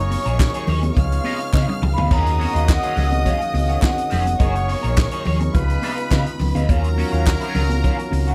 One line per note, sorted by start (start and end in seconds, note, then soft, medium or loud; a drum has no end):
0.00 0.15 F#1 loud
0.00 0.95 F#3 medium
0.00 0.66 A#3 medium
0.00 2.09 D#4 medium
0.00 0.66 G#4 medium
0.00 0.95 G#4 medium
0.00 0.95 A#4 medium
0.00 0.66 C#5 loud
0.00 0.94 C#5 medium
0.00 0.94 C#6 medium
0.11 muted clean electric guitar stroke soft
0.11 open hi-hat medium
0.11 muted conga soft
0.11 high conga medium
0.25 0.47 A#1 medium
0.25 0.38 D#4 medium
0.25 0.39 G#4 medium
0.25 0.39 A#4 medium
0.25 closed hi-hat soft
0.39 muted clean electric guitar stroke soft
0.39 kick loud
0.39 snare loud
0.39 clap loud
0.39 clap medium
0.39 closed hi-hat medium
0.39 muted conga soft
0.54 0.67 D#4 medium
0.54 0.68 G#4 medium
0.54 0.69 C#5 medium
0.54 closed hi-hat medium
0.67 0.89 D#2 medium
0.67 0.83 D#4 medium
0.67 0.83 G#4 medium
0.67 0.83 C#5 medium
0.67 open hi-hat medium
0.67 low conga medium
0.83 muted clean electric guitar stroke medium
0.83 closed hi-hat soft
0.83 high conga loud
0.96 1.18 C#2 medium
0.96 2.10 C#3 medium
0.96 1.81 G#3 medium
0.96 2.10 B3 medium
0.96 1.81 F4 medium
0.96 4.36 G#4 medium
0.96 1.81 C#5 medium
0.96 2.08 F5 medium
0.96 2.08 F6 medium
0.96 muted clean electric guitar stroke soft
0.96 kick loud
0.96 closed hi-hat medium
0.96 muted conga soft
0.96 low conga medium
1.12 muted clean electric guitar stroke soft
1.12 closed hi-hat soft
1.24 1.44 B3 medium
1.24 1.40 D#4 medium
1.24 1.39 F4 medium
1.24 open hi-hat medium
1.24 muted conga soft
1.24 high conga medium
1.40 muted clean electric guitar stroke soft
1.40 closed hi-hat medium
1.53 1.65 C#3 loud
1.53 1.72 B3 medium
1.53 1.69 D#4 medium
1.53 1.67 F4 medium
1.53 kick loud
1.53 snare medium
1.53 clap loud
1.53 muted conga soft
1.53 high conga medium
1.68 muted clean electric guitar stroke medium
1.68 high tom medium
1.82 1.94 C#2 medium
1.82 muted clean electric guitar stroke soft
1.82 mid tom medium
1.82 muted conga soft
1.82 low conga medium
1.94 2.08 D2 medium
1.94 2.10 F4 medium
1.94 2.13 B5 loud
1.98 2.10 B3 medium
1.98 2.11 D#4 medium
1.98 floor tom loud
1.98 high conga medium
2.10 2.44 D#2 loud
2.10 4.38 D#3 medium
2.10 2.29 F#3 medium
2.10 4.07 A#3 medium
2.10 4.38 C#4 medium
2.10 2.30 C#4 medium
2.10 2.30 F4 loud
2.10 4.07 F#4 medium
2.10 4.38 F#4 medium
2.10 4.07 D#5 loud
2.10 4.36 D#5 medium
2.10 2.65 A#5 loud
2.10 4.37 D#6 medium
2.10 kick loud
2.10 crash medium
2.10 muted conga soft
2.26 closed hi-hat soft
2.39 2.54 F#3 medium
2.39 2.54 C#4 medium
2.39 2.54 F#4 medium
2.39 open hi-hat medium
2.39 muted conga soft
2.39 high conga medium
2.54 2.76 D#2 medium
2.54 2.66 F#3 medium
2.54 2.67 C#4 medium
2.54 2.68 F4 medium
2.54 closed hi-hat soft
2.68 3.29 F#5 medium
2.68 muted clean electric guitar stroke soft
2.68 kick loud
2.68 snare loud
2.68 clap loud
2.68 closed hi-hat medium
2.68 muted conga soft
2.83 2.95 F#3 medium
2.83 2.96 C#4 medium
2.83 2.97 F4 medium
2.83 closed hi-hat medium
2.97 3.30 C#2 loud
2.97 3.12 F#3 medium
2.97 3.12 C#4 medium
2.97 3.10 F4 medium
2.97 open hi-hat medium
2.97 low conga medium
3.12 muted clean electric guitar stroke soft
3.12 closed hi-hat soft
3.12 high conga medium
3.25 3.44 F#3 medium
3.25 3.41 C#4 medium
3.25 3.39 F4 medium
3.25 3.81 F5 loud
3.25 kick medium
3.25 closed hi-hat medium
3.25 muted conga soft
3.25 low conga medium
3.41 muted clean electric guitar stroke soft
3.41 closed hi-hat soft
3.54 3.76 C#2 medium
3.54 muted clean electric guitar stroke soft
3.54 open hi-hat medium
3.54 muted conga soft
3.54 high conga medium
3.68 3.81 F#3 medium
3.68 3.81 C#4 medium
3.68 3.82 F#4 medium
3.68 closed hi-hat soft
3.82 muted clean electric guitar stroke soft
3.82 kick loud
3.82 snare loud
3.82 clap loud
3.82 closed hi-hat medium
3.82 muted conga soft
3.82 high conga medium
3.84 4.12 F#5 medium
3.84 clap medium
3.97 muted clean electric guitar stroke medium
3.97 closed hi-hat medium
4.10 4.33 F1 medium
4.10 4.31 F#3 medium
4.10 4.26 C#4 medium
4.10 4.25 F4 loud
4.10 4.66 F#5 medium
4.10 snare soft
4.10 open hi-hat medium
4.10 muted conga soft
4.10 low conga medium
4.26 muted clean electric guitar stroke medium
4.26 closed hi-hat medium
4.26 high conga medium
4.39 4.73 F#1 loud
4.39 5.54 F#3 medium
4.39 5.24 A#3 medium
4.39 4.58 D#4 medium
4.39 6.67 D#4 medium
4.39 5.24 G#4 medium
4.39 4.55 G#4 loud
4.39 5.54 G#4 medium
4.39 5.54 A#4 medium
4.39 4.54 A#4 medium
4.39 5.24 C#5 loud
4.39 5.53 C#5 medium
4.39 5.53 C#6 medium
4.39 kick loud
4.39 closed hi-hat medium
4.39 muted conga soft
4.55 muted clean electric guitar stroke soft
4.55 closed hi-hat soft
4.68 muted clean electric guitar stroke soft
4.68 open hi-hat medium
4.68 high conga medium
4.83 5.05 A#1 medium
4.83 4.96 D#4 soft
4.83 4.96 G#4 medium
4.83 4.96 A#4 medium
4.83 closed hi-hat soft
4.97 muted clean electric guitar stroke soft
4.97 kick loud
4.97 snare loud
4.97 clap medium
4.97 clap loud
4.97 closed hi-hat medium
5.11 5.24 D#4 medium
5.11 5.25 G#4 medium
5.11 5.26 C#5 medium
5.11 closed hi-hat medium
5.25 5.48 D#2 medium
5.25 5.41 D#4 medium
5.25 5.41 G#4 medium
5.25 5.40 C#5 medium
5.25 open hi-hat medium
5.25 low conga loud
5.40 muted clean electric guitar stroke medium
5.40 closed hi-hat soft
5.40 high conga medium
5.54 5.76 C#2 loud
5.54 6.68 C#3 medium
5.54 6.39 G#3 medium
5.54 6.68 B3 medium
5.54 6.39 F4 medium
5.54 8.35 F4 medium
5.54 6.39 B4 loud
5.54 6.67 B4 medium
5.54 6.67 B5 medium
5.54 kick loud
5.54 closed hi-hat medium
5.54 low conga medium
5.70 muted clean electric guitar stroke medium
5.70 closed hi-hat soft
5.82 6.04 B3 medium
5.82 5.99 D#4 loud
5.82 5.97 F4 loud
5.82 open hi-hat medium
5.82 muted conga soft
5.82 high conga medium
5.98 muted clean electric guitar stroke medium
5.98 closed hi-hat medium
6.11 6.23 C#3 loud
6.11 6.30 B3 medium
6.11 6.27 D#4 medium
6.11 6.25 F4 medium
6.11 kick loud
6.11 snare loud
6.11 clap medium
6.11 closed hi-hat medium
6.11 high conga medium
6.26 muted clean electric guitar stroke medium
6.26 closed hi-hat soft
6.39 6.51 C#2 loud
6.39 muted clean electric guitar stroke medium
6.39 open hi-hat medium
6.39 muted conga soft
6.39 low conga medium
6.55 6.65 D2 medium
6.55 6.69 B3 medium
6.55 6.69 D#4 medium
6.55 6.69 F4 medium
6.55 closed hi-hat medium
6.55 high conga medium
6.69 7.02 D#2 loud
6.69 8.35 D#3 medium
6.69 6.88 F#3 loud
6.69 8.35 F#3 medium
6.69 6.88 C#4 medium
6.69 8.35 C#4 medium
6.69 8.35 F4 medium
6.69 6.89 F4 medium
6.69 8.35 A#4 loud
6.69 8.35 A#4 medium
6.69 8.35 A#5 loud
6.69 kick loud
6.69 closed hi-hat medium
6.69 muted conga soft
6.84 closed hi-hat soft
6.97 7.13 F#3 medium
6.97 7.12 C#4 medium
6.97 7.12 F#4 medium
6.97 open hi-hat medium
6.97 high conga medium
7.13 7.34 D#2 medium
7.13 7.24 F#3 medium
7.13 7.25 C#4 medium
7.13 7.26 F4 medium
7.13 closed hi-hat soft
7.26 muted clean electric guitar stroke soft
7.26 kick loud
7.26 snare loud
7.26 clap loud
7.26 closed hi-hat medium
7.26 muted conga soft
7.40 7.53 F#3 medium
7.40 7.54 C#4 medium
7.40 7.55 F4 medium
7.40 closed hi-hat medium
7.54 7.88 C#2 loud
7.54 7.70 F#3 medium
7.54 7.70 C#4 medium
7.54 7.69 F4 medium
7.54 open hi-hat medium
7.54 muted conga soft
7.54 low conga medium
7.70 muted clean electric guitar stroke soft
7.70 closed hi-hat soft
7.70 high conga medium
7.83 8.02 F#3 medium
7.83 7.99 C#4 medium
7.83 7.98 F4 medium
7.83 kick loud
7.83 closed hi-hat medium
7.83 low conga medium
7.99 muted clean electric guitar stroke soft
7.99 closed hi-hat soft
8.11 8.34 C#2 medium
8.11 muted clean electric guitar stroke soft
8.11 open hi-hat medium
8.11 high conga medium
8.27 8.35 F#3 medium
8.27 8.35 C#4 medium
8.27 8.35 F#4 medium
8.27 closed hi-hat medium